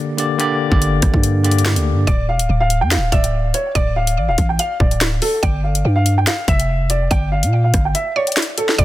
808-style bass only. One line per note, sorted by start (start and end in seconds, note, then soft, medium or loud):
0.72 1.01 G1 loud
1.03 1.13 G1 loud
1.14 1.78 G2 loud
1.77 1.94 D2 loud
1.92 2.07 G2 loud
2.07 2.30 D1 loud
2.29 2.41 E1 loud
2.40 2.49 D1 loud
2.49 2.83 D1 loud
2.82 2.99 F2 loud
2.97 3.12 D1 loud
3.12 3.53 D1 loud
3.75 4.19 D1 loud
4.17 4.30 A1 loud
4.28 4.38 D1 loud
4.38 4.58 A1 loud
4.80 5.20 D1 loud
5.43 5.83 G1 loud
5.85 6.25 G2 loud
6.48 7.08 F1 loud
7.11 7.45 G1 loud
7.43 7.72 A#2 loud
7.74 7.94 G1 loud
8.79 8.85 D1 loud